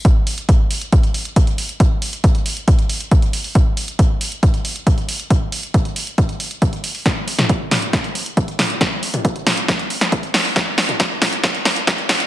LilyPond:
\new DrumStaff \with { instrumentName = "Drums" } \drummode { \time 4/4 \tempo 4 = 137 <hh bd>8 hho16 hh16 <hh bd>8 hho16 hh16 <hh bd>16 hh16 hho16 hh16 <hh bd>16 hh16 hho16 hh16 | <hh bd>8 hho16 hh16 <hh bd>16 hh16 hho16 hh16 <hh bd>16 hh16 hho16 hh16 <hh bd>16 hh16 hho16 hho16 | <hh bd>8 hho16 hh16 <hh bd>8 hho16 hh16 <hh bd>16 hh16 hho16 hh16 <hh bd>16 hh16 hho16 hh16 | <hh bd>8 hho16 hh16 <hh bd>16 hh16 hho16 hh16 <hh bd>16 hh16 hho16 hh16 <hh bd>16 hh16 hho16 hho16 |
<hh bd sn>8 hho16 <hh sn toml>16 <hh bd>8 <hho sn toml>16 hh16 <hh bd sn>16 hh16 hho16 hh16 <hh bd>16 hh16 <hho sn toml>16 hh16 | <hh bd sn>8 hho16 <hh toml>16 <hh bd>16 hh16 <hho sn toml>16 hh16 <hh bd sn>16 hh16 hho16 <hh sn>16 <hh bd>16 hh16 <hho sn>16 hho16 | <hh bd sn>8 <hho sn>16 <hh toml>16 <hh bd sn>8 <hho sn toml>16 hh16 <hh bd sn>16 hh16 <hho sn>16 hh16 <hh bd sn>16 hh16 <hho sn toml>16 hh16 | }